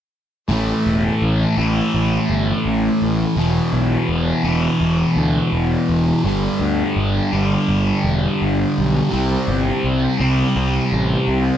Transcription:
0.48 0.71 A1 medium
0.48 1.55 A2 medium
0.48 1.59 E3 medium
0.48 1.56 A3 medium
0.86 1.08 E1 medium
1.22 1.44 A1 medium
1.57 1.79 A1 medium
1.57 3.37 A2 medium
1.57 3.36 E3 medium
1.57 3.35 A3 medium
1.94 2.16 A1 medium
2.30 2.52 G1 medium
2.66 2.88 A1 medium
3.02 3.24 A1 medium
3.36 3.59 E1 medium
3.36 4.43 E2 medium
3.36 4.44 B2 medium
3.36 4.44 E3 medium
3.73 3.95 B1 medium
4.09 4.31 E1 medium
4.44 4.66 E1 medium
4.44 6.24 E2 medium
4.44 6.23 B2 medium
4.44 6.22 E3 medium
4.81 5.03 E1 medium
5.16 5.38 D2 medium
5.53 5.75 E1 medium
5.89 6.11 E1 medium
6.24 6.46 G1 medium
6.24 7.30 G2 medium
6.24 7.31 D3 medium
6.24 7.32 G3 medium
6.60 6.82 D2 medium
6.96 7.18 G1 medium
7.32 7.55 G1 medium
7.32 9.11 G2 medium
7.32 9.10 D3 medium
7.32 9.10 G3 medium
7.69 7.90 G1 medium
8.04 8.26 E1 medium
8.42 8.63 G1 medium
8.78 9.00 B1 medium
9.10 9.35 C2 medium
9.10 10.17 C3 medium
9.10 10.18 G3 medium
9.10 10.20 C4 medium
9.48 9.70 G1 medium
9.84 10.06 C2 medium
10.20 10.42 C2 medium
10.20 11.57 C3 medium
10.20 11.57 G3 medium
10.20 11.57 C4 medium
10.56 10.78 C2 medium
10.92 11.14 A1 medium
11.28 11.50 C2 medium

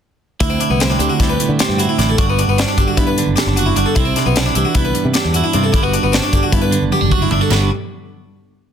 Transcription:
0.40 0.56 D2 medium
0.40 1.98 D2 medium
0.40 0.50 E4 medium
0.40 1.79 E4 medium
0.40 kick medium
0.40 closed hi-hat medium
0.50 0.60 C4 medium
0.60 0.70 D4 medium
0.60 closed hi-hat medium
0.70 0.94 C2 medium
0.70 0.80 B3 medium
0.80 0.90 C4 medium
0.80 1.59 C4 medium
0.80 snare loud
0.80 closed hi-hat medium
0.90 1.00 D4 medium
0.99 1.08 D2 medium
0.99 2.76 D3 medium
0.99 1.09 G4 medium
0.99 closed hi-hat medium
1.09 1.19 F#4 medium
1.20 1.36 D2 medium
1.20 2.98 G3 medium
1.20 1.30 E4 medium
1.20 kick medium
1.20 snare soft
1.20 closed hi-hat medium
1.29 1.49 B4 medium
1.40 2.19 A2 medium
1.40 closed hi-hat medium
1.49 1.57 D3 medium
1.59 2.17 C4 medium
1.59 1.79 G4 medium
1.59 snare loud
1.59 closed hi-hat medium
1.69 1.85 G2 medium
1.78 1.98 E4 medium
1.78 1.89 F#4 medium
1.78 closed hi-hat medium
1.89 1.99 E4 medium
1.99 2.15 A1 medium
1.99 2.17 D2 medium
1.99 2.09 D4 medium
1.99 2.18 E4 medium
1.99 snare soft
1.99 closed hi-hat medium
2.09 2.19 A4 medium
2.17 3.76 G2 medium
2.17 2.29 D4 medium
2.17 3.57 F#4 medium
2.17 kick medium
2.17 closed hi-hat medium
2.30 2.39 B3 medium
2.39 2.48 D4 medium
2.39 closed hi-hat medium
2.48 2.64 G1 medium
2.48 2.58 B3 medium
2.58 2.68 C4 medium
2.58 3.38 D4 medium
2.58 snare loud
2.58 closed hi-hat medium
2.68 2.78 D4 medium
2.77 2.86 G1 medium
2.77 3.17 D3 medium
2.77 2.88 G4 medium
2.77 kick medium
2.77 closed hi-hat soft
2.88 2.97 F#4 medium
2.97 3.21 G2 medium
2.97 3.99 B3 medium
2.97 3.07 E4 medium
2.97 kick medium
2.97 closed hi-hat medium
3.07 3.27 B4 medium
3.18 3.94 D3 medium
3.18 closed hi-hat medium
3.27 3.35 F#1 medium
3.36 3.99 D4 medium
3.36 3.56 G4 medium
3.36 snare loud
3.36 closed hi-hat medium
3.46 3.71 F#1 medium
3.56 3.66 F#4 medium
3.56 3.77 F#4 medium
3.56 closed hi-hat medium
3.66 3.76 E4 medium
3.76 3.84 G1 medium
3.76 3.94 G2 medium
3.76 3.86 D4 medium
3.76 3.94 F#4 medium
3.76 closed hi-hat medium
3.86 3.96 A4 medium
3.95 4.12 C2 medium
3.95 4.55 C3 medium
3.95 4.05 E4 medium
3.95 5.35 E4 medium
3.95 kick loud
3.95 closed hi-hat medium
4.05 4.15 C4 medium
4.16 4.26 D4 medium
4.16 snare soft
4.16 closed hi-hat medium
4.26 4.50 B1 medium
4.26 4.36 B3 medium
4.36 4.46 C4 medium
4.36 5.16 D4 medium
4.36 snare loud
4.36 closed hi-hat medium
4.46 4.55 D4 medium
4.55 4.63 C2 medium
4.55 5.71 E3 medium
4.55 4.65 G4 medium
4.55 closed hi-hat medium
4.65 4.75 F#4 medium
4.75 4.91 C2 medium
4.75 6.53 B3 medium
4.75 4.85 E4 medium
4.75 kick loud
4.75 closed hi-hat medium
4.85 5.04 B4 medium
4.94 5.54 G2 medium
4.94 closed hi-hat medium
5.05 5.13 C3 medium
5.14 5.78 D4 medium
5.14 5.34 G4 medium
5.14 snare loud
5.14 closed hi-hat medium
5.25 5.41 E2 medium
5.34 5.54 E4 medium
5.34 5.44 F#4 medium
5.34 closed hi-hat medium
5.44 5.54 E4 medium
5.53 5.70 G2 medium
5.53 5.72 C3 medium
5.53 5.64 D4 medium
5.53 5.73 E4 soft
5.53 closed hi-hat medium
5.63 5.73 A4 medium
5.73 5.97 G1 medium
5.73 7.30 G2 medium
5.73 5.83 D4 medium
5.73 5.84 E4 medium
5.73 kick medium
5.73 closed hi-hat medium
5.83 5.93 B3 medium
5.83 7.11 F#4 medium
5.94 6.03 D4 medium
5.94 closed hi-hat medium
6.03 6.19 G1 medium
6.03 6.13 B3 medium
6.12 6.22 C4 medium
6.12 6.92 D4 medium
6.12 snare medium
6.12 closed hi-hat medium
6.23 6.33 D4 medium
6.33 6.41 G1 medium
6.33 6.70 D3 medium
6.33 6.43 G4 medium
6.33 kick medium
6.33 closed hi-hat medium
6.43 6.53 F#4 medium
6.52 6.76 G2 medium
6.52 6.91 B3 medium
6.52 6.62 E4 medium
6.52 kick medium
6.52 closed hi-hat medium
6.62 6.82 B4 medium
6.71 7.48 D3 medium
6.71 closed hi-hat medium
6.82 6.90 F#1 medium
6.92 7.01 B3 medium
6.92 7.12 G4 medium
6.92 high tom medium
7.01 7.26 F#1 medium
7.01 7.51 D4 soft
7.11 7.21 F#4 medium
7.11 7.31 F#4 medium
7.11 kick medium
7.22 7.32 E4 medium
7.31 7.39 G1 medium
7.31 7.49 G2 medium
7.31 7.42 D4 medium
7.31 7.41 E4 soft
7.31 floor tom medium
7.41 7.51 F#4 soft
7.41 7.51 A4 medium
7.50 7.69 G1 medium
7.50 7.68 G2 medium
7.50 7.69 D3 medium
7.50 7.70 G3 medium
7.50 7.69 B3 medium
7.50 7.70 D4 medium
7.50 7.70 F#4 soft
7.50 snare medium
7.50 floor tom medium
7.50 crash medium

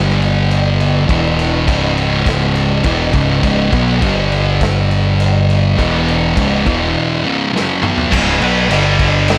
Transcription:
0.00 1.05 G1 medium
0.00 1.08 G2 loud
0.00 1.09 D3 medium
0.00 1.09 G3 loud
0.09 snare soft
0.22 crash medium
0.51 crash medium
0.80 crash medium
1.09 1.64 E1 medium
1.09 1.66 E2 loud
1.09 1.67 B2 medium
1.09 1.68 E3 loud
1.09 kick loud
1.09 crash medium
1.39 crash medium
1.66 2.81 C#1 medium
1.66 2.83 C#2 medium
1.66 2.84 G#2 loud
1.66 2.84 C#3 loud
1.66 kick loud
1.66 crash medium
1.97 crash medium
2.26 kick loud
2.26 snare loud
2.26 crash medium
2.56 crash medium
2.84 3.12 E1 loud
2.84 3.11 E2 loud
2.84 3.12 B2 loud
2.84 3.13 E3 loud
2.84 kick loud
2.84 crash medium
3.12 3.41 C#1 medium
3.12 3.41 C#2 medium
3.12 3.42 G#2 loud
3.12 3.42 C#3 medium
3.12 kick loud
3.12 crash medium
3.42 3.70 C#1 medium
3.42 3.70 C#2 medium
3.42 3.71 G#2 loud
3.42 3.72 C#3 loud
3.42 kick loud
3.42 crash medium
3.71 4.00 B1 loud
3.71 4.00 B2 medium
3.71 4.01 F#3 loud
3.71 4.01 B3 loud
3.71 kick loud
3.71 crash medium
4.02 5.73 G1 loud
4.02 5.76 G2 medium
4.02 5.77 D3 medium
4.02 5.77 G3 loud
4.02 kick loud
4.02 crash medium
4.32 crash medium
4.61 kick loud
4.61 snare loud
4.61 crash medium
4.91 crash medium
5.20 crash medium
5.50 crash medium
5.77 6.33 E1 medium
5.77 6.35 E2 medium
5.77 6.35 B2 loud
5.77 6.36 E3 loud
5.77 kick loud
5.77 crash medium
6.08 crash medium
6.36 6.64 C#1 medium
6.36 6.64 C#2 medium
6.36 6.65 G#2 medium
6.36 6.65 C#3 medium
6.36 kick loud
6.36 crash medium
6.64 6.93 E1 loud
6.64 7.22 E2 medium
6.64 7.23 B2 medium
6.64 7.23 E3 medium
6.64 kick loud
6.64 crash medium
7.23 7.52 C#2 medium
7.23 7.52 G#2 loud
7.23 7.52 C#3 medium
7.53 7.81 F#2 medium
7.53 7.81 C#3 loud
7.53 7.82 F#3 loud
7.53 snare medium
7.82 8.11 B2 loud
7.82 8.11 F#3 loud
7.82 8.11 B3 loud
7.82 mid tom medium
7.98 floor tom medium
8.11 8.39 C#1 medium
8.11 8.40 C#2 medium
8.11 8.40 G#2 loud
8.11 8.40 C#3 loud
8.11 kick loud
8.11 crash loud
8.11 crash medium
8.40 8.68 B1 loud
8.40 8.68 B2 medium
8.40 8.69 F#3 loud
8.40 8.70 B3 loud
8.40 crash medium
8.68 9.38 G1 medium
8.68 9.38 G2 medium
8.68 9.38 D3 loud
8.68 9.38 G3 loud
8.68 crash medium
8.99 kick medium
8.99 crash medium
9.28 snare loud
9.28 crash medium

